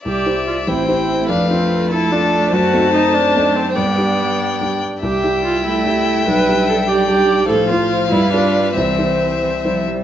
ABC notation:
X:1
M:6/8
L:1/16
Q:3/8=97
K:C
V:1 name="Violin"
e6 g6 | f6 a6 | a12 | g8- g2 z2 |
g12- | g12 | f12 | e8- e2 z2 |]
V:2 name="Violin"
d6 c6 | B6 A6 | c12 | d8- d2 z2 |
e12- | e6 d6 | c6 B6 | c8- c2 z2 |]
V:3 name="Viola"
G4 F2 E2 E4 | D2 C4 E2 D4 | ^F4 ^D2 =D4 C2 | B,8- B,2 z2 |
G4 F2 E2 E4 | B4 A2 G2 G4 | A2 F4 E2 D4 | C8- C2 z2 |]
V:4 name="Grand piano"
C,,2 [EGc]4 A,,,2 [EGc]4 | F,,2 [DFA]6 [DFA]4 | ^F,,2 [C^DA]6 [CDA]4 | G,,2 [G,DG]6 [G,DG]4 |
C,,2 [G,EG]6 [G,EG]4 | B,,,2 [G,DG]6 [G,DG]4 | A,,2 [F,Fc]4 G,,2 [G,FB]4 | C,,2 [G,Ec]6 [G,Ec]4 |]
V:5 name="Cello" clef=bass
z6 C6 | A,12- | A,12 | G,8- G, z3 |
z6 A,6 | G,12 | F,6 G,6 | E,6 E,2 F,2 G,2 |]